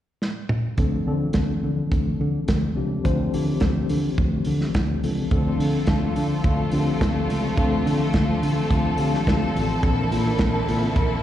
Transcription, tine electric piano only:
0.77 0.99 F3 medium
0.77 1.00 C4 medium
0.77 1.00 D4 medium
0.77 1.00 A4 medium
1.06 1.13 E3 medium
1.06 1.93 C4 medium
1.06 1.93 D4 medium
1.06 1.93 A4 medium
1.13 1.96 F3 medium
2.76 2.98 F3 medium
2.76 2.98 C4 medium
2.76 2.98 D4 medium
2.76 2.98 G4 medium
3.03 3.26 F3 medium
3.03 3.26 C4 medium
3.03 3.26 D4 medium
3.03 3.27 C5 medium
3.33 3.40 E3 medium
3.33 4.19 C4 medium
3.33 4.20 D4 medium
3.33 4.20 G4 medium
3.40 4.23 F3 medium
5.03 5.24 F3 medium
5.03 5.25 C4 medium
5.03 5.25 D4 medium
5.03 5.25 A4 medium
5.32 6.17 F3 medium
5.32 6.17 C4 medium
5.32 6.18 D4 medium
5.32 6.18 A4 medium
6.73 7.37 F3 medium
6.73 7.37 C4 medium
6.73 7.37 D4 medium
6.73 6.80 G4 medium
6.80 7.41 A4 medium
7.57 7.64 E3 medium
7.57 8.43 C4 medium
7.57 8.43 D4 medium
7.57 8.43 A4 medium
7.63 8.46 F3 medium
8.98 9.63 F3 medium
8.98 9.63 C4 medium
8.98 9.63 D4 medium
8.98 9.63 G4 medium
9.81 10.68 E3 medium
9.81 10.68 C4 medium
9.81 10.68 D4 medium
9.81 10.69 A4 medium

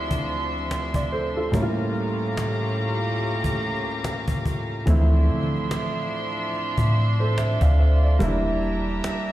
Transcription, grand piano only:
0.00 1.49 D2 medium
0.00 1.49 F3 medium
0.00 1.50 A3 medium
0.00 1.50 C4 medium
0.00 0.71 E4 medium
0.00 1.55 G4 medium
0.00 1.56 A#4 medium
0.95 1.11 D5 medium
1.12 1.35 A4 medium
1.12 1.35 C5 medium
1.36 1.61 F4 medium
1.36 1.76 A4 medium
1.52 4.82 A2 medium
1.52 4.83 G3 medium
1.52 4.83 A#3 medium
1.52 4.84 C#4 medium
1.56 1.62 E4 medium
1.62 4.87 F4 medium
4.86 4.94 E3 medium
4.86 7.33 A3 medium
4.86 7.34 C4 medium
4.90 7.35 F3 medium
4.90 7.34 E4 medium
7.20 7.37 A4 soft
7.20 7.36 C5 medium
7.38 7.61 C5 medium
7.38 7.60 E5 medium
7.62 7.78 D5 medium
7.62 7.78 F5 medium
7.79 8.02 C5 medium
7.79 8.02 E5 medium
8.04 8.43 D5 medium
8.19 9.32 G3 medium
8.19 9.32 A#3 medium
8.19 9.32 D4 medium
8.19 9.32 E4 medium

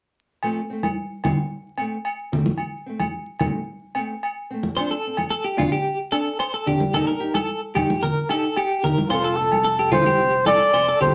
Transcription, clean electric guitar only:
4.77 4.90 C5 medium
4.91 5.16 A4 medium
5.30 5.44 A4 medium
5.44 5.57 G4 medium
5.58 5.71 F4 medium
5.72 5.98 G4 medium
6.12 6.38 A4 medium
6.40 6.53 C5 medium
6.54 6.66 A4 medium
6.67 6.93 G4 medium
6.94 7.07 A4 medium
7.07 7.33 A#4 medium
7.35 7.61 A4 medium
7.75 8.01 G4 medium
8.03 8.28 A#4 medium
8.31 8.56 A4 medium
8.57 8.83 G4 medium
8.84 9.09 A#4 medium
9.10 9.23 C5 medium
9.24 9.50 A4 medium
9.65 9.78 A4 medium
9.79 9.91 G4 medium
9.92 10.05 F4 medium
10.06 10.32 G4 medium
10.46 10.72 A4 medium
10.74 10.86 C5 medium
10.88 11.00 A4 medium
11.01 11.15 G4 medium

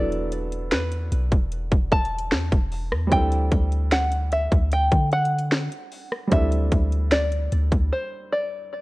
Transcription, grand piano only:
0.00 3.06 F#3 medium
0.00 3.07 B3 medium
0.00 3.08 D4 medium
0.00 3.09 E4 medium
0.00 3.10 A4 medium
3.07 6.26 G3 medium
3.07 6.27 C4 medium
3.12 6.28 D4 medium
3.12 6.29 E4 medium
3.16 6.30 A4 medium
6.28 8.81 G3 medium
6.28 8.81 C4 medium
6.32 8.81 D4 medium
6.32 8.81 E4 medium
6.36 8.81 A4 medium

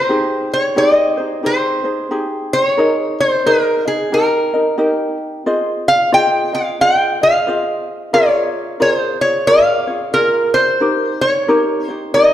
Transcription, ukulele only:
0.00 0.10 G#4 medium
0.09 0.77 D#4 medium
0.09 0.75 G4 medium
0.09 0.77 G#4 medium
0.76 1.18 D#4 medium
0.76 1.17 G4 medium
0.76 1.17 G#4 medium
0.76 1.16 C5 medium
1.17 1.42 D#4 soft
1.17 1.43 G#4 soft
1.17 1.44 C5 medium
1.43 1.84 D#4 medium
1.43 1.84 G4 medium
1.43 1.84 G#4 medium
1.43 1.83 C5 medium
1.84 2.10 D#4 soft
1.84 2.10 G#4 soft
1.84 2.11 C5 medium
2.11 2.78 D#4 medium
2.11 2.77 G4 medium
2.11 2.77 G#4 medium
2.77 3.46 D#4 medium
2.77 3.45 G#4 medium
2.77 3.46 A#4 medium
2.77 3.47 D#5 medium
3.46 3.86 D#4 medium
3.46 3.85 G#4 medium
3.46 3.86 A#4 medium
3.46 3.84 D#5 medium
3.85 4.11 D#4 soft
3.85 4.12 G#4 soft
3.85 4.12 D#5 soft
4.12 4.53 D#4 medium
4.12 4.53 G4 medium
4.12 4.53 A#4 medium
4.12 4.52 D#5 medium
4.54 4.77 D#4 soft
4.54 4.78 A#4 soft
4.54 4.78 D#5 soft
4.78 5.46 D#4 medium
4.78 5.45 G4 medium
4.78 5.46 A#4 medium
4.78 5.47 D#5 medium
5.46 6.12 F4 medium
5.46 6.13 G#4 medium
5.46 6.11 C5 medium
5.46 6.12 D#5 medium
6.12 6.53 F4 medium
6.12 6.53 G#4 medium
6.12 6.53 C5 medium
6.12 6.52 D#5 medium
6.53 6.80 F4 soft
6.53 6.80 G#4 soft
6.53 6.79 D#5 soft
6.81 7.21 F4 medium
6.81 7.21 G#4 medium
6.81 7.21 C5 medium
6.81 7.20 D#5 medium
7.21 7.47 F4 soft
7.21 7.47 G#4 soft
7.21 7.47 D#5 soft
7.47 8.14 F4 medium
7.47 8.14 G#4 medium
7.47 8.13 C5 medium
7.47 8.15 D#5 medium
8.13 8.79 F4 medium
8.13 8.80 G#4 medium
8.13 8.79 A#4 medium
8.13 9.21 C#5 medium
8.80 9.21 F4 medium
8.80 9.21 G#4 medium
8.80 9.21 A#4 medium
9.21 9.47 F4 soft
9.21 9.47 G#4 soft
9.21 9.47 C#5 soft
9.47 9.88 F4 medium
9.47 9.88 G#4 medium
9.47 9.88 A#4 medium
9.47 9.86 C#5 medium
9.87 10.13 F4 soft
9.87 10.13 G#4 soft
9.87 10.14 C#5 medium
10.14 10.80 F4 medium
10.14 10.81 G#4 medium
10.14 10.80 A#4 medium
10.80 11.48 D#4 medium
10.80 11.48 G4 medium
10.80 11.47 A#4 medium
11.48 11.89 D#4 medium
11.48 11.89 G4 medium
11.48 11.89 A#4 medium
11.48 11.87 C#5 medium
11.89 12.14 D#4 soft
11.89 12.15 G4 soft
11.89 12.15 C#5 soft
12.14 12.34 D#4 medium
12.14 12.34 G4 medium
12.14 12.34 A#4 medium
12.14 12.34 C#5 medium

